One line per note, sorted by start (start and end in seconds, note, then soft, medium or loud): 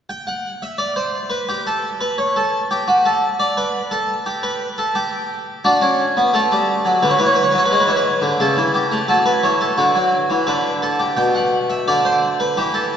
0.09 0.27 G5 medium
0.27 0.49 F#5 medium
0.62 0.79 E5 medium
0.78 0.96 D5 medium
0.96 1.18 C5 medium
1.30 1.47 B4 medium
1.49 1.66 G4 medium
1.67 1.88 A4 medium
2.01 2.18 B4 medium
2.18 2.35 C#5 medium
2.36 2.58 A4 medium
2.71 2.88 G4 medium
2.88 3.05 F#4 medium
3.06 3.27 A4 medium
3.40 3.57 D5 medium
3.57 3.79 B4 medium
3.91 4.13 A4 medium
4.26 4.43 G4 medium
4.43 4.65 B4 medium
4.78 4.95 A4 medium
4.95 5.63 G4 medium
5.65 5.81 D4 medium
5.65 6.32 F#4 medium
5.81 6.03 C#4 medium
6.17 6.34 B3 medium
6.33 6.50 A3 medium
6.33 7.01 A4 medium
6.52 6.73 G3 medium
6.85 7.02 F#3 medium
7.03 7.19 D3 medium
7.03 7.11 B4 medium
7.10 7.18 C#5 medium
7.18 7.41 E3 medium
7.18 7.26 B4 medium
7.26 7.34 C#5 medium
7.35 7.43 B4 medium
7.43 7.51 C#5 soft
7.51 7.71 F#3 medium
7.51 7.59 B4 medium
7.58 7.66 C#5 medium
7.65 7.74 B4 medium
7.71 7.88 G#3 medium
7.71 7.82 C#5 medium
7.80 7.89 B4 medium
7.87 8.09 E3 medium
7.87 7.97 C#5 medium
7.96 8.38 B4 medium
8.22 8.39 D3 medium
8.40 8.57 C#3 medium
8.40 8.61 A4 medium
8.57 8.78 E3 medium
8.74 8.96 G4 medium
8.91 9.08 A3 medium
9.08 9.30 F#3 medium
9.08 9.25 A4 medium
9.26 9.42 B4 medium
9.43 9.65 E3 medium
9.43 9.60 C#5 medium
9.61 9.77 A4 medium
9.78 9.95 D3 medium
9.78 10.45 F#4 medium
9.95 10.16 F#3 medium
10.30 10.47 E3 medium
10.47 11.15 D3 medium
10.47 10.69 B4 medium
10.82 10.99 A4 medium
10.99 11.17 G4 medium
11.17 11.85 B2 medium
11.17 11.34 G5 medium
11.35 11.57 F#5 medium
11.70 11.87 E5 medium
11.88 12.55 D3 medium
11.88 12.04 D5 medium
12.05 12.27 C5 medium
12.40 12.57 B4 medium
12.57 12.97 E3 medium
12.57 12.74 G4 medium
12.74 12.96 A4 medium